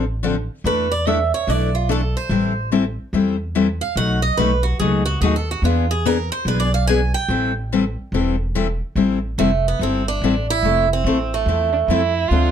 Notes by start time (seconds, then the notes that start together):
Already playing: A1
0.23 D3 F3 C4 D4 A4
0.64 E2 E3 A3 D4 E4 A4 B4
0.92 D5
1.07 E3 A3 D4 E4 A4 E5
1.34 C#5
1.47 B1 E3 A3 D4 E4 A4 D5
1.75 F4
1.89 E3 A3 D4 E4 A4
2.17 C5
2.29 A1 E3 G3 C4 E4 A4
2.72 E3 G3 C4 E4 A4
3.13 E2 E3 G3 C4 E4 A4
3.55 E3 G3 C4 E4 A4
3.81 F5
3.96 B1 B2 F#3 A3 D#4 F#4 F#5
4.22 D#5
4.37 B1 B2 F#3 A3 D#4 F#4 B4
4.63 F#4
4.79 C#2 B2 F#3 A3 D#4 F#4 G#4
5.05 F#4
5.21 D#2 B2 F#3 A3 D#4 F#4 G#4
5.36 A4
5.51 F#4
5.62 E2 E3 B3 D4 F4 G#4
5.91 G#4
6.05 E3 B3 D4 G#4 A#4
6.32 C5
6.45 B1 E3 B3 D4 G#4 B4
6.60 D5
6.74 F5
6.87 E3 B3 D4 G#4 G#5
7.14 G5
7.28 A1 E3 G3 C4 E4 A4
7.72 E3 G3 C4 E4 A4
8.12 E1 E3 G3 C4 E4 A4
8.55 E3 G3 C4 E4 A4
8.95 A1 E3 G3 C4 E4 A4
9.38 F1 E3 G3 A3 C4 E4 A4
9.68 B3
9.79 G1 E3 G3 C4 E4 A4
10.08 D4
10.22 A1 E3 G3 C4 E4 A4
10.50 E4
10.63 F1 F3 A3 C4 E4 A4
10.93 C4
11.04 A1 F3 A3 C4 E4 A4
11.34 A3
11.46 E2 F3 A3 C4 E4 A4
11.73 D4
11.88 F2 F3 A3 C4 E4 A4
12.28 D2 D3 F3 C4 F4
12.32 D4 A4